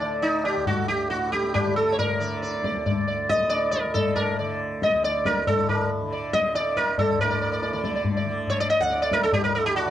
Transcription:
Already playing: D2 A2
0.00 D3 D5, tabla na
0.22 D#4, tabla tin
0.44 G4, tabla na
0.56 D2
0.66 F#4, tabla tin, tabla ge
0.88 G4
1.10 A2 F#4, tabla te
1.22 tabla te
1.32 G4, tabla ke
1.44 tabla te
1.54 G4, tabla na, tabla ge
1.66 D3
1.76 A4, tabla te
1.92 C#5
1.99 A#4, tabla tin, tabla ge
2.20 D3 D5
2.42 D5, tabla te
2.53 tabla te
2.64 D5, tabla ke
2.75 D2, tabla te
2.86 D5, tabla tin, tabla ge
3.08 D5
3.29 A2 D#5, tabla ke
3.49 D5, tabla te
3.71 A#4, tabla ke
3.85 D3
3.94 A4, tabla tin, tabla ge
4.16 A#4, tabla na, tabla ge
4.39 D3 D5
4.82 D#5, tabla ke
4.93 D2
5.04 D5, tabla te
5.25 A#4, tabla ke
5.47 A2 A4, tabla tin, tabla ge
5.69 A#4, tabla na, tabla ge
6.02 D3
6.12 D5
6.33 D#5, tabla ke
6.55 D3 D5, tabla te
6.77 A#4, tabla ke
6.98 A4, tabla tin, tabla ge
7.10 D2
7.19 A2 A#4 D5, tabla tin, tabla ge
7.30 D5
7.42 D5
7.52 D5
7.62 D5, tabla te
7.73 D3 D5, tabla te
7.84 D5, tabla ke
7.94 D5, tabla te
8.05 tabla tin, tabla ge
8.17 D5
8.26 D3
8.47 C#5, tabla tin, tabla ge
8.60 D5
8.70 D#5
8.80 D2 F#5
8.90 D5, tabla te
9.01 D5, tabla te
9.12 A#4, tabla ke
9.22 A4, tabla te
9.32 A2 G4, tabla tin, tabla ge
9.44 A#4
9.55 A4
9.66 G4
9.76 F#4, tabla na
9.86 D3

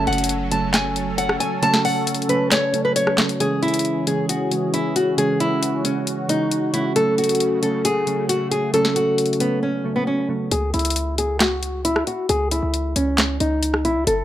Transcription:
Already playing: C#3 F#3 A3 C#4 A4
0.07 F#1 F#5, closed hi-hat
0.13 closed hi-hat
0.18 closed hi-hat
0.24 closed hi-hat
0.29 closed hi-hat
0.51 C#3 F#3 A3 C#4 A5, closed hi-hat
0.74 G#5, snare, clap, closed hi-hat
0.96 closed hi-hat
1.18 F#5, closed hi-hat
1.29 cross-stick
1.40 G#5, closed hi-hat
1.62 C#3 F#3 A3 C#4 A5, closed hi-hat
1.74 snare
1.85 F#5, open hi-hat
2.07 closed hi-hat
2.15 closed hi-hat
2.22 closed hi-hat
2.28 C#3 F#3 A3 C#4 B4, closed hi-hat
2.51 C#5, snare, clap, closed hi-hat
2.73 C#3 F#3 A3 C#4, closed hi-hat
2.85 B4
2.96 C#5, closed hi-hat
3.07 cross-stick
3.17 C#3 F#3 A3 C#4, snare, clap, closed hi-hat
3.29 closed hi-hat
3.40 C#3 E3 G#3 C#4 G#4, closed hi-hat
3.62 E4, closed hi-hat
3.68 closed hi-hat
3.74 closed hi-hat
3.79 closed hi-hat
3.85 closed hi-hat
4.06 C#3 E3 G#3 C#4 G#4, closed hi-hat
4.29 F#4, closed hi-hat
4.51 C#3 E3 G#3 C#4, closed hi-hat
4.74 E4, closed hi-hat
4.96 F#4, closed hi-hat
5.17 C#3 E3 G#3 C#4 F#4 G#4, closed hi-hat
5.40 E4, closed hi-hat
5.63 closed hi-hat
5.84 C#3 E3 G#3 C#4, closed hi-hat
6.07 closed hi-hat
6.28 C#3 E3 G#3 C#4 D#4, closed hi-hat
6.51 closed hi-hat
6.73 C#3 E3 G#3 C#4 E4, closed hi-hat
6.95 C#3 F#3 A3 C#4 A4, closed hi-hat
7.18 F#4, closed hi-hat
7.24 closed hi-hat
7.29 closed hi-hat
7.35 closed hi-hat
7.40 closed hi-hat
7.62 C#3 F#3 A3 C#4 A4, closed hi-hat
7.85 G#4, closed hi-hat
8.07 C#3 F#3 A3 C#4, closed hi-hat
8.29 F#4, closed hi-hat
8.51 G#4, closed hi-hat
8.73 C#3 F#3 A3 C#4 A4, closed hi-hat
8.85 snare
8.96 F#4, closed hi-hat
9.18 closed hi-hat
9.26 closed hi-hat
9.33 closed hi-hat
9.39 C#3 F#3 A3 B3 C#4, closed hi-hat
9.63 C#4
9.84 C#3 F#3 A3 C#4
9.96 B3
10.07 C#4
10.29 C#3 F#3 A3 C#4
10.51 C#2 G#4, closed hi-hat
10.74 C#2 E4, closed hi-hat
10.79 closed hi-hat
10.85 closed hi-hat
10.90 closed hi-hat
10.96 closed hi-hat
11.18 G#4, closed hi-hat
11.40 F#4, snare, clap, closed hi-hat
11.63 closed hi-hat
11.85 E4, closed hi-hat
11.96 cross-stick
12.07 F#4, closed hi-hat
12.29 C#2 G#4, closed hi-hat
12.51 E4, closed hi-hat
12.63 C#2
12.74 closed hi-hat
12.96 C#2 C#4, closed hi-hat
13.18 snare, clap, closed hi-hat
13.40 C#2 D#4, closed hi-hat
13.63 closed hi-hat
13.74 cross-stick
13.85 B1 E4, closed hi-hat
13.96 C#2
14.07 F#1 A4, closed hi-hat

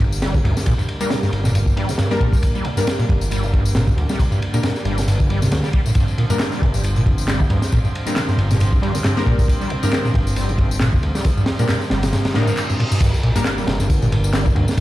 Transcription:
Already playing: G1 D3 G3 A#3
0.00 kick, ride
0.12 tambourine
0.22 G3, snare, ride
0.34 G2, kick, tambourine
0.44 D2 G2, ride
0.57 snare, tambourine
0.66 A#2, kick, ride
0.78 G2, tambourine
0.88 ride
1.00 G3 A#3 D4 A#4, ride, tambourine
1.10 G2, snare, ride, tambourine
1.23 G2, snare, tambourine
1.33 G1, ride
1.44 A#2, snare, tambourine
1.54 G2, ride, tambourine
1.66 kick, tambourine
1.76 G2 G3, ride
1.88 G2, snare, tambourine
1.98 G2, snare, ride, tambourine
2.11 G3 A#3 D4 A#4, snare, tambourine
2.20 A#2, kick, ride
2.32 G2, kick, tambourine
2.43 kick, ride, tambourine
2.55 G3, tambourine
2.64 G2, ride
2.76 G2 G3 A#3 D4 A#4, tambourine
2.87 snare, ride
2.99 A#2, snare, tambourine
3.09 G1 G2, kick, ride
3.21 tambourine
3.31 G3, ride, tambourine
3.43 G2, tambourine
3.53 G2, kick, ride
3.65 tambourine
3.75 A#2, snare, ride
3.87 G2, kick, tambourine
3.97 D2, ride
4.09 G3, snare, tambourine
4.19 G2, kick, ride, tambourine
4.31 G2, tambourine
4.42 ride
4.53 A#2 G3 A#3 D4 A#4, ride, tambourine
4.63 G2, snare, ride, tambourine
4.75 snare, tambourine
4.85 G1 G3, ride
4.98 G2, snare, tambourine
5.07 G1 G2, ride, tambourine
5.20 kick, tambourine
5.29 G3, ride
5.42 C3, snare, tambourine
5.51 D2, snare, ride, tambourine
5.64 G3, snare, tambourine
5.73 G3, kick, ride
5.86 A2, tambourine
5.95 G2 F3 C4, kick, ride
6.08 tambourine
6.18 A#2, ride
6.29 G2 G3 A#3 D4 A#4, tambourine
6.39 snare, clap, ride, tambourine
6.52 G3, snare, tambourine
6.61 G1 G2, kick, ride
6.74 G2, tambourine
6.84 ride, tambourine
6.96 A#2, tambourine
7.06 G2, kick, ride
7.18 tambourine
7.28 G3, snare, clap, ride
7.40 G2, kick, tambourine
7.50 D2 G2, ride
7.62 snare, tambourine
7.72 A#2, kick, ride, tambourine
7.84 G2, tambourine
7.95 ride
8.06 G3 A#3 D4 A#4, ride, tambourine
8.16 G2, snare, clap, ride, tambourine
8.28 G2, snare, tambourine
8.38 G1, ride
8.50 A#2, snare, tambourine
8.60 G2, ride, tambourine
8.73 kick, tambourine
8.82 G2 G3, ride
8.95 G2, snare, tambourine
9.04 G2, snare, clap, ride
9.17 G3 A#3 D4 A#4, snare, tambourine
9.26 A#2, kick, ride
9.39 G2, kick, tambourine
9.48 kick, ride, tambourine
9.61 G3, tambourine
9.70 G2, ride
9.83 G2 G3 A#3 D4 A#4, tambourine
9.91 snare, clap, ride
10.05 A#2, snare, tambourine
10.14 G1 G2, kick, ride
10.27 tambourine
10.36 G3, ride, tambourine
10.49 G2, tambourine
10.58 G2, kick, ride
10.71 tambourine
10.80 A#2, snare, clap, ride
10.93 G2, kick, tambourine
11.03 D2, ride
11.15 G3, snare, tambourine
11.24 G2, kick, ride, tambourine
11.37 G2, tambourine
11.46 snare, ride
11.59 A#2 G3 A#3 D4 A#4, ride, tambourine
11.69 G2, snare, clap, ride, tambourine
11.81 snare, tambourine
11.90 G1 G3, snare, ride
12.03 G2, snare, ride, tambourine
12.13 G2, snare, ride, tambourine, reverse cymbal
12.25 snare, ride, tambourine
12.34 A2 G3 A#3 D4 A#4, snare, ride
12.47 G2, snare, tambourine
12.57 clap, ride, tambourine
12.70 G2, tambourine
12.79 A#2, ride
12.91 G2, tambourine
13.01 G2 D3 G3 A#3, kick, crash, ride, tambourine, sub drop
13.14 tambourine
13.23 A#2, ride
13.35 G2 G3 A#3 D4 A#4, tambourine
13.45 snare, clap, ride, tambourine
13.58 G3, snare, tambourine
13.67 G1 G2, snare, ride
13.79 G2, snare, tambourine
13.90 kick, ride, tambourine
14.02 A#2, tambourine
14.12 G2, ride
14.24 tambourine
14.33 G3, snare, clap, ride, tambourine
14.46 G2, kick, tambourine
14.55 D2 G2, ride
14.68 snare, tambourine

